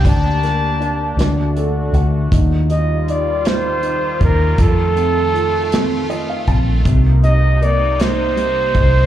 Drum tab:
HH |xxxxxx|xxxxxx|xxxxxx|xxxxxx|
SD |-o-o--|---o--|---o--|---o--|
BD |o-----|o----o|o----o|o----o|